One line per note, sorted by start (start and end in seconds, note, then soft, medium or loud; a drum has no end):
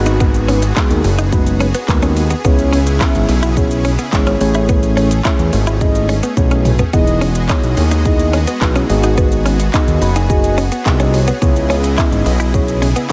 0.00 0.72 G#1 loud
0.00 0.59 G#3 loud
0.00 0.60 B3 medium
0.00 4.37 B3 medium
0.00 0.60 D#4 medium
0.00 0.60 F#4 medium
0.00 2.41 F#4 medium
0.00 6.89 G#4 medium
0.00 0.60 B4 loud
0.00 downlifter medium
0.06 0.16 D#4 medium
0.06 closed hi-hat medium
0.06 shaker medium
0.20 0.30 B3 medium
0.20 kick loud
0.20 shaker medium
0.34 closed hi-hat soft
0.34 shaker medium
0.48 0.58 C#4 medium
0.48 open hi-hat medium
0.48 shaker medium
0.62 muted clean electric guitar stroke soft
0.62 closed hi-hat medium
0.62 shaker medium
0.76 1.09 G#3 medium
0.76 1.09 B3 medium
0.76 1.09 D#4 medium
0.76 0.86 D#4 medium
0.76 1.09 F#4 medium
0.76 1.09 G#4 loud
0.76 kick loud
0.76 clap loud
0.76 shaker medium
0.90 1.02 D#2 medium
0.90 closed hi-hat medium
0.90 shaker medium
1.04 1.73 F#1 loud
1.04 muted clean electric guitar stroke soft
1.04 open hi-hat medium
1.04 shaker medium
1.19 1.28 D#4 medium
1.19 closed hi-hat medium
1.19 shaker medium
1.32 1.65 G#3 loud
1.32 1.65 B3 medium
1.32 1.65 D#4 loud
1.32 1.65 F#4 medium
1.32 1.65 B4 loud
1.32 muted clean electric guitar stroke soft
1.32 kick loud
1.32 shaker medium
1.47 closed hi-hat medium
1.47 shaker medium
1.60 1.70 C#4 medium
1.60 open hi-hat medium
1.60 shaker medium
1.75 1.84 B3 medium
1.75 closed hi-hat medium
1.75 shaker medium
1.88 2.34 D#2 loud
1.88 2.21 G#3 medium
1.88 2.21 B3 medium
1.88 2.21 D#4 medium
1.88 2.21 F#4 medium
1.88 2.21 B4 loud
1.88 kick loud
1.88 clap loud
1.88 shaker medium
2.02 2.12 C#4 medium
2.02 closed hi-hat medium
2.02 shaker medium
2.17 muted clean electric guitar stroke soft
2.17 open hi-hat medium
2.17 shaker medium
2.30 2.40 B3 medium
2.30 closed hi-hat medium
2.30 shaker medium
2.45 3.02 C#2 loud
2.45 4.39 C#3 medium
2.45 2.77 B3 loud
2.45 2.54 B3 medium
2.45 2.77 C#4 medium
2.45 4.39 C#4 medium
2.45 4.39 E4 medium
2.45 2.77 E4 medium
2.45 2.77 G#4 medium
2.45 2.77 C#5 loud
2.45 kick loud
2.45 shaker medium
2.59 closed hi-hat medium
2.59 shaker medium
2.73 2.82 C#4 medium
2.73 open hi-hat medium
2.73 shaker medium
2.87 muted clean electric guitar stroke soft
2.87 closed hi-hat medium
2.87 shaker medium
3.00 3.33 B3 medium
3.00 3.33 C#4 medium
3.00 3.10 E4 medium
3.00 3.33 E4 medium
3.00 3.33 G#4 medium
3.00 3.33 E5 loud
3.00 kick loud
3.00 clap loud
3.00 shaker medium
3.15 3.26 G#1 medium
3.15 closed hi-hat medium
3.15 shaker medium
3.29 3.97 B1 loud
3.29 muted clean electric guitar stroke soft
3.29 open hi-hat medium
3.29 shaker medium
3.43 3.52 E4 medium
3.43 closed hi-hat medium
3.43 shaker medium
3.57 3.89 B3 loud
3.57 3.89 C#4 medium
3.57 3.89 E4 loud
3.57 3.89 G#4 medium
3.57 3.89 C#5 loud
3.57 muted clean electric guitar stroke soft
3.57 kick loud
3.57 shaker medium
3.71 closed hi-hat medium
3.71 shaker medium
3.85 3.94 C#4 medium
3.85 open hi-hat medium
3.85 shaker medium
3.99 4.08 B3 medium
3.99 closed hi-hat medium
3.99 shaker medium
4.13 4.36 G#1 loud
4.13 4.41 B3 medium
4.13 4.40 C#4 medium
4.13 4.40 E4 medium
4.13 4.40 G#4 medium
4.13 4.40 C#5 loud
4.13 kick loud
4.13 clap loud
4.13 shaker medium
4.27 4.36 C#4 medium
4.27 closed hi-hat medium
4.27 shaker medium
4.41 5.21 A1 loud
4.41 5.08 A3 medium
4.41 6.91 A3 medium
4.41 5.08 C#4 medium
4.41 6.91 C#4 medium
4.41 5.08 E4 medium
4.41 5.08 G#4 medium
4.41 5.08 C#5 loud
4.41 muted clean electric guitar stroke soft
4.41 open hi-hat medium
4.41 shaker medium
4.54 4.64 E4 medium
4.54 closed hi-hat medium
4.54 shaker medium
4.69 4.78 B3 medium
4.69 kick loud
4.69 shaker medium
4.83 closed hi-hat medium
4.83 shaker soft
4.97 5.06 C#4 medium
4.97 open hi-hat medium
4.97 shaker soft
5.11 muted clean electric guitar stroke soft
5.11 closed hi-hat medium
5.11 shaker medium
5.25 5.57 A3 medium
5.25 5.57 C#4 medium
5.25 5.34 E4 medium
5.25 5.57 E4 medium
5.25 5.57 G#4 medium
5.25 5.57 C#5 loud
5.25 kick loud
5.25 clap loud
5.25 shaker medium
5.39 5.50 E2 medium
5.39 closed hi-hat medium
5.39 shaker medium
5.53 6.22 G#1 loud
5.53 muted clean electric guitar stroke soft
5.53 open hi-hat medium
5.53 shaker medium
5.67 5.77 E4 medium
5.67 closed hi-hat medium
5.67 shaker medium
5.81 6.13 A3 loud
5.81 6.13 C#4 medium
5.81 6.13 E4 medium
5.81 6.13 G#4 medium
5.81 6.14 D#5 loud
5.81 muted clean electric guitar stroke soft
5.81 kick loud
5.81 shaker medium
5.95 closed hi-hat medium
5.95 shaker medium
6.09 6.19 C#4 medium
6.09 open hi-hat medium
6.09 shaker medium
6.23 6.33 B3 medium
6.23 closed hi-hat medium
6.23 shaker medium
6.37 6.83 B1 loud
6.37 6.69 A3 medium
6.37 6.69 C#4 medium
6.37 6.69 E4 medium
6.37 6.70 G#4 medium
6.37 6.70 C#5 loud
6.37 kick loud
6.37 high tom medium
6.37 shaker medium
6.51 6.61 C#4 medium
6.51 closed hi-hat medium
6.51 shaker medium
6.65 muted clean electric guitar stroke soft
6.65 mid tom loud
6.65 open hi-hat medium
6.65 shaker medium
6.79 6.89 B3 medium
6.79 closed hi-hat medium
6.79 floor tom loud
6.79 shaker medium
6.93 7.50 E1 loud
6.93 8.88 G#3 medium
6.93 7.25 B3 loud
6.93 7.03 B3 medium
6.93 13.12 B3 medium
6.93 7.26 D#4 medium
6.93 7.26 E4 medium
6.93 11.38 F#4 medium
6.93 7.26 G#4 medium
6.93 8.88 G#4 medium
6.93 7.26 D#5 loud
6.93 8.88 D#5 medium
6.93 kick loud
6.93 shaker medium
7.07 closed hi-hat medium
7.07 shaker medium
7.21 7.31 C#4 medium
7.21 open hi-hat medium
7.21 shaker medium
7.35 muted clean electric guitar stroke soft
7.35 closed hi-hat medium
7.35 shaker medium
7.49 7.82 B3 medium
7.49 7.82 D#4 medium
7.49 7.59 D#4 medium
7.49 7.82 E4 medium
7.49 7.82 G#4 medium
7.49 7.82 C#5 loud
7.49 kick loud
7.49 clap loud
7.49 shaker medium
7.63 7.75 B1 medium
7.63 closed hi-hat medium
7.63 shaker medium
7.77 8.46 D#2 loud
7.77 muted clean electric guitar stroke soft
7.77 open hi-hat medium
7.77 shaker medium
7.91 8.01 D#4 medium
7.91 closed hi-hat medium
7.91 shaker medium
8.05 8.38 B3 loud
8.05 8.38 D#4 medium
8.05 8.38 E4 medium
8.05 8.38 G#4 medium
8.05 8.38 D#5 loud
8.05 muted clean electric guitar stroke soft
8.05 kick loud
8.05 shaker medium
8.19 closed hi-hat medium
8.19 shaker medium
8.33 8.43 C#4 medium
8.33 open hi-hat medium
8.33 shaker medium
8.47 8.57 B3 medium
8.47 closed hi-hat medium
8.47 shaker medium
8.61 8.84 B1 loud
8.61 8.88 B3 medium
8.61 8.88 D#4 medium
8.61 8.90 E4 medium
8.61 8.89 G#4 medium
8.61 8.90 B4 loud
8.61 kick loud
8.61 clap loud
8.61 shaker medium
8.75 8.85 C#4 medium
8.75 closed hi-hat medium
8.75 shaker medium
8.90 9.70 G#1 loud
8.90 9.57 B3 loud
8.90 9.57 D#4 medium
8.90 9.57 F#4 medium
8.90 13.12 G#4 medium
8.90 9.57 G#4 medium
8.90 9.57 D#5 loud
8.90 muted clean electric guitar stroke soft
8.90 open hi-hat medium
8.90 shaker medium
9.03 9.13 D#4 medium
9.03 closed hi-hat medium
9.03 shaker medium
9.18 9.27 B3 medium
9.18 kick loud
9.18 shaker medium
9.32 closed hi-hat medium
9.32 shaker medium
9.46 9.55 C#4 medium
9.46 open hi-hat medium
9.46 shaker medium
9.60 muted clean electric guitar stroke soft
9.60 closed hi-hat medium
9.60 shaker medium
9.73 10.06 B3 medium
9.73 10.06 D#4 medium
9.73 9.83 D#4 medium
9.73 10.06 F#4 medium
9.73 10.06 G#4 medium
9.73 10.06 D#5 loud
9.73 kick loud
9.73 clap loud
9.73 shaker medium
9.88 9.99 D#2 medium
9.88 closed hi-hat medium
9.88 shaker medium
10.02 10.70 F#1 loud
10.02 10.15 B5 medium
10.02 muted clean electric guitar stroke soft
10.02 open hi-hat medium
10.02 shaker medium
10.16 10.25 D#4 medium
10.16 10.28 G#5 medium
10.16 closed hi-hat medium
10.16 shaker medium
10.29 10.62 B3 loud
10.29 10.62 D#4 medium
10.29 10.62 F#4 medium
10.29 10.62 G#4 medium
10.29 10.62 D#5 loud
10.29 10.56 G#5 medium
10.29 muted clean electric guitar stroke soft
10.29 kick loud
10.29 shaker medium
10.44 closed hi-hat medium
10.44 shaker medium
10.58 10.67 C#4 medium
10.58 10.84 F#5 medium
10.58 open hi-hat medium
10.58 shaker medium
10.72 10.81 B3 medium
10.72 closed hi-hat medium
10.72 shaker medium
10.86 11.31 C2 loud
10.86 11.18 B3 loud
10.86 11.18 D#4 medium
10.86 11.18 F#4 medium
10.86 11.18 G#4 medium
10.86 11.18 D#5 loud
10.86 kick loud
10.86 clap loud
10.86 shaker medium
11.00 11.09 C#4 medium
11.00 closed hi-hat medium
11.00 shaker medium
11.14 11.40 C#5 medium
11.14 muted clean electric guitar stroke soft
11.14 open hi-hat medium
11.14 shaker medium
11.28 11.37 B3 medium
11.28 closed hi-hat medium
11.28 shaker medium
11.42 11.99 C#2 loud
11.42 13.12 C#3 medium
11.42 11.51 B3 medium
11.42 11.74 B3 loud
11.42 11.74 C#4 medium
11.42 11.74 E4 medium
11.42 13.12 E4 medium
11.42 11.74 G#4 medium
11.42 11.74 C#5 loud
11.42 13.12 D#5 medium
11.42 kick loud
11.42 shaker medium
11.56 closed hi-hat medium
11.56 shaker soft
11.70 11.79 C#4 medium
11.70 open hi-hat medium
11.70 shaker medium
11.84 muted clean electric guitar stroke soft
11.84 closed hi-hat medium
11.84 shaker medium
11.98 12.30 B3 medium
11.98 12.30 C#4 medium
11.98 12.07 E4 medium
11.98 12.30 E4 medium
11.98 12.30 G#4 medium
11.98 12.30 D#5 loud
11.98 kick loud
11.98 clap loud
11.98 shaker medium
12.12 12.23 G#1 medium
12.12 closed hi-hat medium
12.12 shaker medium
12.26 12.95 B1 loud
12.26 muted clean electric guitar stroke soft
12.26 open hi-hat medium
12.26 shaker medium
12.40 12.49 E4 medium
12.40 closed hi-hat medium
12.40 shaker medium
12.54 12.86 B3 loud
12.54 12.86 C#4 loud
12.54 12.86 E4 medium
12.54 12.86 G#4 medium
12.54 12.86 C#5 loud
12.54 muted clean electric guitar stroke soft
12.54 kick loud
12.54 shaker medium
12.68 closed hi-hat medium
12.68 shaker medium
12.82 12.91 C#4 medium
12.82 open hi-hat medium
12.82 shaker medium
12.96 13.05 B3 medium
12.96 closed hi-hat medium
12.96 shaker medium